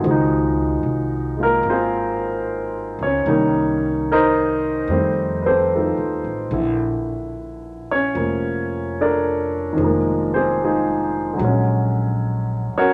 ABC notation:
X:1
M:4/4
L:1/8
Q:"Swing" 1/4=74
K:Fphr
V:1 name="Grand piano"
G z2 [B,B] [CFAc] z2 [Dd]- | [Dd]2 [EBce]3 [C=G=A_c=c] [=A,EFA]2 | z3 [Dd]3 [=D=AB=d]2- | [=D=AB=d] [C=G_Ac] [A,EFA]2 z3 [^C^FB^c] |]
V:2 name="Grand piano" clef=bass
[E,F,A,E]3 [A,B,F]4- [A,B,F] | [E,=G,B,E]4 [E,G,=A,C]4 | [=D,=E,=E]4 [F,B,]4 | [E,F,A,B,]4 [=D,^F,A,^C]4 |]
V:3 name="Upright bass" clef=bass
D,,2 C,,2 A,,,3 D,, | C,,4 F,,2- (3F,, E,, =A,,, | B,,,4 F,,,4 | F,,,4 B,,,3 z |]